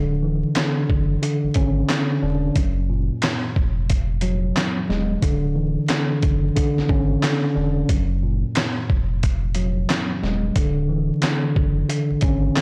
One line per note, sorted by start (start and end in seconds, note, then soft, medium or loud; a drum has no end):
0.00 0.44 D1 loud
0.00 0.54 D3 loud
0.23 2.56 E3 medium
0.55 1.21 D3 medium
0.55 snare loud
0.55 clap medium
0.55 closed hi-hat medium
0.90 1.17 F#1 medium
0.90 kick medium
1.22 1.88 D3 medium
1.22 closed hi-hat medium
1.44 1.49 G#1 soft
1.54 1.83 G#1 medium
1.54 2.56 C#4 medium
1.54 kick medium
1.54 closed hi-hat medium
1.89 2.56 D3 medium
1.89 snare loud
1.89 clap medium
1.89 closed hi-hat medium
2.22 2.50 E1 loud
2.22 2.56 D4 medium
2.56 3.10 F#1 loud
2.56 4.54 F#2 medium
2.56 kick loud
2.56 closed hi-hat medium
2.90 5.23 A#2 medium
3.22 snare loud
3.22 clap medium
3.22 closed hi-hat medium
3.56 4.52 F1 medium
3.56 kick medium
3.90 kick medium
3.90 closed hi-hat medium
4.21 5.22 F#3 medium
4.21 closed hi-hat medium
4.56 5.23 F#2 medium
4.56 snare loud
4.56 clap medium
4.56 closed hi-hat medium
4.89 5.17 D#1 medium
4.89 5.23 G#3 medium
4.89 snare soft
5.22 5.77 D1 loud
5.22 5.87 D3 loud
5.22 kick loud
5.22 closed hi-hat medium
5.56 7.89 E3 medium
5.88 6.54 D3 medium
5.88 snare loud
5.88 clap medium
5.88 closed hi-hat medium
6.22 6.50 F#1 medium
6.22 kick loud
6.22 closed hi-hat medium
6.55 7.22 D3 medium
6.55 kick medium
6.55 closed hi-hat medium
6.77 6.82 G#1 soft
6.77 snare soft
6.89 7.17 G#1 medium
6.89 7.90 C#4 medium
6.89 kick medium
7.23 7.89 D3 medium
7.23 snare loud
7.23 clap medium
7.23 closed hi-hat medium
7.56 7.83 E1 medium
7.56 7.89 D4 medium
7.89 8.44 F#1 loud
7.89 9.88 F#2 medium
7.89 kick loud
7.89 closed hi-hat medium
8.23 10.56 A#2 medium
8.55 snare loud
8.55 clap medium
8.55 closed hi-hat medium
8.90 9.86 F1 medium
8.90 kick loud
9.23 kick medium
9.23 closed hi-hat medium
9.55 10.56 F#3 medium
9.55 closed hi-hat medium
9.89 10.56 F#2 medium
9.89 snare loud
9.89 clap medium
9.89 closed hi-hat medium
10.23 10.50 D#1 medium
10.23 10.56 G#3 medium
10.23 snare soft
10.56 11.11 D1 loud
10.56 11.21 D3 loud
10.56 kick loud
10.56 closed hi-hat medium
10.89 12.61 E3 medium
11.22 11.87 D3 medium
11.22 snare loud
11.22 clap medium
11.22 closed hi-hat medium
11.56 11.83 F#1 medium
11.56 kick loud
11.89 12.55 D3 medium
11.89 closed hi-hat medium
12.11 12.15 G#1 soft
12.21 12.50 G#1 medium
12.21 12.61 C#4 medium
12.21 kick loud
12.21 closed hi-hat medium
12.56 12.61 D3 medium
12.56 snare loud
12.56 clap medium
12.56 closed hi-hat medium